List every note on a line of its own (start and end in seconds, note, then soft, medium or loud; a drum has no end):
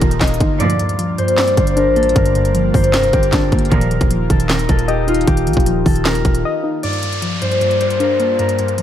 0.00 0.20 D#1 loud
0.00 0.57 D#3 medium
0.00 0.60 D#3 medium
0.00 0.41 F3 medium
0.00 6.79 A#3 medium
0.00 0.57 D#4 medium
0.00 1.37 F4 medium
0.00 6.79 F4 medium
0.00 1.39 G4 loud
0.00 1.76 A#4 medium
0.00 kick loud
0.00 closed hi-hat medium
0.11 closed hi-hat medium
0.21 0.40 D#1 loud
0.21 0.60 D#5 loud
0.21 kick medium
0.21 snare medium
0.21 clap medium
0.21 closed hi-hat medium
0.27 closed hi-hat medium
0.34 closed hi-hat medium
0.40 0.59 G1 loud
0.40 0.60 D#4 medium
0.40 kick medium
0.40 closed hi-hat medium
0.60 0.88 D2 loud
0.60 0.79 G2 medium
0.60 0.88 A#2 loud
0.60 0.88 F3 loud
0.60 3.69 G3 medium
0.60 3.69 D4 medium
0.60 1.37 D5 loud
0.60 closed hi-hat medium
0.70 closed hi-hat medium
0.79 1.17 G2 medium
0.79 closed hi-hat medium
0.89 closed hi-hat medium
0.99 1.96 F3 medium
0.99 closed hi-hat medium
1.18 1.36 G2 medium
1.18 1.57 C5 medium
1.18 closed hi-hat medium
1.28 closed hi-hat medium
1.38 2.14 G2 medium
1.38 3.23 D5 medium
1.38 snare loud
1.38 clap loud
1.38 closed hi-hat medium
1.48 closed hi-hat medium
1.57 1.88 G1 loud
1.57 2.74 C5 medium
1.57 kick loud
1.57 closed hi-hat medium
1.67 closed hi-hat medium
1.76 2.74 D4 loud
1.76 2.02 A#4 medium
1.76 closed hi-hat medium
1.86 2.14 A1 loud
1.96 2.94 A#3 medium
1.96 2.22 A4 medium
1.96 closed hi-hat medium
2.03 closed hi-hat medium
2.09 closed hi-hat medium
2.16 2.72 G1 loud
2.16 2.34 G2 medium
2.16 2.93 A#4 medium
2.16 kick loud
2.16 closed hi-hat medium
2.26 closed hi-hat medium
2.35 2.74 G2 medium
2.35 closed hi-hat medium
2.45 closed hi-hat medium
2.54 3.52 F3 medium
2.54 closed hi-hat loud
2.74 2.95 G1 loud
2.74 2.92 G2 medium
2.74 4.72 C5 medium
2.74 kick loud
2.74 open hi-hat medium
2.84 closed hi-hat medium
2.93 3.12 F1 loud
2.93 3.71 G2 medium
2.93 3.39 A#4 medium
2.93 snare loud
2.93 clap loud
2.93 closed hi-hat medium
3.03 closed hi-hat medium
3.13 3.32 G1 loud
3.13 4.88 G4 medium
3.13 kick loud
3.13 closed hi-hat medium
3.23 closed hi-hat medium
3.33 3.51 G1 loud
3.33 3.72 D4 medium
3.33 3.78 A4 medium
3.33 kick loud
3.33 snare loud
3.33 clap medium
3.33 closed hi-hat medium
3.52 3.71 G1 loud
3.52 3.72 A#3 medium
3.52 kick medium
3.52 closed hi-hat medium
3.59 closed hi-hat medium
3.65 closed hi-hat medium
3.71 4.00 D#1 loud
3.71 3.99 A#2 loud
3.71 3.90 D#3 medium
3.71 6.80 D#3 medium
3.71 3.99 F3 loud
3.71 6.80 D#4 medium
3.71 4.36 A#4 medium
3.71 kick loud
3.71 closed hi-hat medium
3.81 closed hi-hat medium
3.91 4.29 D#3 medium
3.91 closed hi-hat medium
4.01 4.29 D#1 loud
4.01 kick loud
4.01 closed hi-hat medium
4.11 5.08 F3 medium
4.11 closed hi-hat medium
4.30 4.67 D#1 loud
4.30 4.49 D#3 medium
4.30 4.55 A4 medium
4.30 kick loud
4.30 closed hi-hat medium
4.40 closed hi-hat medium
4.49 5.26 D#3 medium
4.49 4.75 A#4 medium
4.49 snare loud
4.49 clap loud
4.49 closed hi-hat medium
4.59 closed hi-hat medium
4.69 5.25 D#1 loud
4.69 5.86 A4 medium
4.69 kick loud
4.69 closed hi-hat medium
4.79 closed hi-hat medium
4.88 5.27 G4 medium
4.88 5.86 D#5 loud
4.88 closed hi-hat medium
5.07 6.05 D#4 medium
5.07 7.60 F4 medium
5.07 closed hi-hat medium
5.14 closed hi-hat medium
5.21 closed hi-hat medium
5.27 5.48 D#1 loud
5.27 5.46 D#3 medium
5.27 7.63 G4 loud
5.27 kick loud
5.27 closed hi-hat medium
5.37 closed hi-hat medium
5.47 5.56 A#1 loud
5.47 5.84 D#3 medium
5.47 closed hi-hat medium
5.53 5.85 D#1 loud
5.53 kick loud
5.53 closed hi-hat medium
5.60 closed hi-hat soft
5.66 6.64 F3 medium
5.66 closed hi-hat loud
5.86 6.23 D#1 loud
5.86 6.04 D#3 medium
5.86 6.12 A4 medium
5.86 kick loud
5.86 open hi-hat medium
5.96 closed hi-hat medium
6.05 6.83 D#3 medium
6.05 8.00 A#4 medium
6.05 snare loud
6.05 clap loud
6.05 closed hi-hat medium
6.15 closed hi-hat medium
6.25 6.44 D#1 loud
6.25 kick loud
6.25 closed hi-hat medium
6.35 closed hi-hat medium
6.45 6.84 D#5 loud
6.64 6.83 D#4 medium
6.83 8.82 G2 medium
6.83 7.02 G2 medium
6.83 8.82 G3 medium
6.83 8.82 A#3 medium
6.83 8.82 F4 medium
6.83 7.61 D5 medium
6.83 closed hi-hat medium
6.83 downlifter medium
6.93 closed hi-hat medium
7.03 7.41 G2 medium
7.03 closed hi-hat medium
7.13 closed hi-hat medium
7.22 8.20 F3 medium
7.22 closed hi-hat medium
7.42 7.60 G2 medium
7.42 7.80 C5 medium
7.42 closed hi-hat medium
7.52 closed hi-hat medium
7.61 8.38 G2 medium
7.61 8.82 D5 medium
7.61 closed hi-hat medium
7.71 closed hi-hat medium
7.81 8.82 C5 medium
7.81 closed hi-hat medium
7.90 closed hi-hat medium
8.00 8.82 D4 loud
8.00 8.26 A#4 medium
8.00 closed hi-hat medium
8.20 8.82 A#3 medium
8.20 8.45 A4 medium
8.20 closed hi-hat medium
8.39 8.58 G2 medium
8.39 8.82 A#4 medium
8.39 closed hi-hat medium
8.49 closed hi-hat medium
8.59 8.82 G2 medium
8.59 closed hi-hat medium
8.68 closed hi-hat medium
8.78 8.82 F3 medium
8.78 closed hi-hat medium